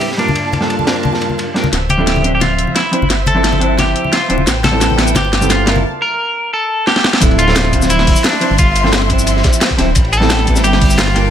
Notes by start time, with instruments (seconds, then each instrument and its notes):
Already playing: string section A2 D4 G4 B4 E5, clean electric guitar G4
0.01 ride
0.12 snare
0.17 string section G2 A#3 D4 F4 A5, hollow-body jazz guitar G3 A#3 D4 F4 A#4, clean electric guitar D4, ride
0.28 high conga
0.35 ride
0.53 ride, high bongo, high conga
0.60 hollow-body jazz guitar G3 A#3 D4 F4 A4, snare
0.70 ride
0.79 high conga
0.84 hollow-body jazz guitar G3 A#3 D4, snare, ride
0.89 hollow-body jazz guitar F4 A#4
0.96 ride
1.03 ride, high conga
1.13 snare, high bongo
1.21 ride, high bongo
1.29 high conga
1.38 ride, high bongo
1.54 hollow-body jazz guitar G3 A#3 D4 F4 A#4, snare, ride
1.64 high conga
1.73 detuned saw bass D1, string section C5 E5, snare, closed hi-hat
1.89 clean electric guitar G4, closed hi-hat, high conga
1.97 hollow-body jazz guitar F3 C4 D4 E4 A4
2.07 snare, closed hi-hat
2.16 high conga
2.22 hollow-body jazz guitar F3 C4 D4, closed hi-hat
2.26 hollow-body jazz guitar C5 E5
2.35 clean electric guitar G4
2.41 clean electric guitar F4, snare, closed hi-hat, high conga
2.59 closed hi-hat
2.67 high conga
2.76 clean electric guitar E4, snare, closed hi-hat
2.91 hollow-body jazz guitar F3 C4 D4 E4 C5, closed hi-hat
3.02 detuned saw bass G1, high conga
3.10 snare, closed hi-hat
3.26 clean electric guitar A4, closed hi-hat, high conga
3.34 hollow-body jazz guitar F3 C4 D4 E4 A4
3.44 snare, closed hi-hat
3.53 high conga
3.58 hollow-body jazz guitar F3 C4 D4, closed hi-hat
3.63 hollow-body jazz guitar E4 C5
3.78 clean electric guitar G4, snare, closed hi-hat, high conga
3.96 closed hi-hat
4.05 high conga
4.13 clean electric guitar F4, snare, closed hi-hat
4.28 detuned saw bass D1, hollow-body jazz guitar F3 C4 D4 E4 C5, closed hi-hat
4.38 high conga
4.47 detuned saw bass A1, string section B4 G5, snare, closed hi-hat, shaker
4.64 clean electric guitar A4, snare, closed hi-hat, high bongo, high conga, shaker
4.71 hollow-body jazz guitar G3 B3 C4 E4 A4
4.81 snare, closed hi-hat, shaker
4.90 high conga
4.96 hollow-body jazz guitar G3 B3 C4, snare, closed hi-hat, shaker
5.00 hollow-body jazz guitar E4 B4
5.07 shaker
5.15 detuned saw bass G1, clean electric guitar G4, snare, closed hi-hat, high conga, shaker
5.25 high bongo
5.33 snare, closed hi-hat
5.40 hollow-body jazz guitar G3 B3 C4 E4 A4, high conga, shaker
5.50 clean electric guitar F4, snare, closed hi-hat, shaker
5.64 detuned saw bass G1, hollow-body jazz guitar G3 A#3 C4, string section A#4 F5 A5, snare, closed hi-hat
5.69 hollow-body jazz guitar E4 A#4
5.76 high conga
6.02 clean electric guitar A#4
6.53 clean electric guitar A4
6.87 clean electric guitar G4, snare
6.96 snare
7.04 snare
7.13 snare
7.20 detuned saw bass D1, hollow-body jazz guitar F3 C4 D4 E4 A4, string section E5 C6, kick, closed hi-hat, ride, shaker
7.31 ride
7.39 clean electric guitar F4, closed hi-hat, ride, shaker
7.46 hollow-body jazz guitar F3 C4 D4 E4 A4, snare
7.56 snare, closed hi-hat, ride, shaker
7.65 snare, ride
7.70 hollow-body jazz guitar F3 C4 D4, kick, closed hi-hat, ride, shaker
7.74 hollow-body jazz guitar E4 C5
7.82 snare, shaker
7.90 clean electric guitar E4, closed hi-hat, ride, shaker
7.99 snare
8.07 kick, closed hi-hat, open hi-hat
8.16 shaker
8.24 clean electric guitar D4, snare, closed hi-hat, ride, shaker
8.32 snare
8.40 hollow-body jazz guitar F3 C4 D4 E4 C5, closed hi-hat, ride
8.50 detuned saw bass G1
8.58 clean electric guitar F4, kick, closed hi-hat, ride, shaker
8.76 closed hi-hat, ride, shaker
8.83 hollow-body jazz guitar F3 C4 D4 E4 A4, snare
8.93 snare, closed hi-hat, ride, shaker
9.02 snare
9.07 hollow-body jazz guitar F3 C4 D4, kick, closed hi-hat, ride, shaker
9.11 hollow-body jazz guitar E4 C5
9.19 shaker
9.27 closed hi-hat, ride, shaker
9.36 snare
9.44 kick, snare, closed hi-hat, ride
9.53 shaker
9.61 snare, closed hi-hat, ride, shaker
9.70 kick
9.77 detuned saw bass D1, hollow-body jazz guitar F3 C4 D4 E4 C5, snare, closed hi-hat, ride
9.95 detuned saw bass A1, string section G5 B5, kick, closed hi-hat, ride, shaker
10.05 ride
10.13 clean electric guitar A4, closed hi-hat, ride, shaker
10.20 hollow-body jazz guitar G3 B3 C4 E4 A4, snare
10.30 snare, closed hi-hat, ride, shaker
10.39 snare, ride
10.44 hollow-body jazz guitar G3 B3 C4, kick, closed hi-hat, ride, shaker
10.48 hollow-body jazz guitar E4 B4
10.56 snare, shaker
10.64 detuned saw bass G1, clean electric guitar G4, closed hi-hat, ride, shaker
10.73 snare
10.81 kick, closed hi-hat, open hi-hat
10.90 shaker
10.98 clean electric guitar F4, snare, closed hi-hat, ride, shaker
11.08 snare
11.14 detuned saw bass G1, hollow-body jazz guitar G3 A#3 D4 F4 A#4, string section F5 G5 A5, closed hi-hat, ride